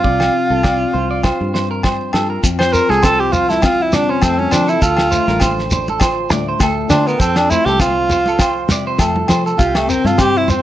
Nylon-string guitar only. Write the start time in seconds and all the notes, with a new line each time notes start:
Already playing: F3 F4
0.04 C3 C4
0.64 C4
0.94 F3 C4
1.24 C4
1.55 G2 C4
1.85 muted nylon-string guitar stroke
2.15 F4
2.43 F2 C4
2.74 muted nylon-string guitar stroke
3.33 F3 C4
3.64 C4
3.92 C3 C4
4.23 A3
4.53 A4
4.82 D3, muted nylon-string guitar stroke
5.13 A3
5.73 D4
6.02 F4
6.31 A2 D4
6.61 A3
6.91 F4
7.19 F2 C4
7.50 A3
8.09 F3 C4
8.39 C4
8.68 C3 C4
9.00 A3
9.30 A4
9.59 C3 C4
9.89 C4
10.48 F3 F4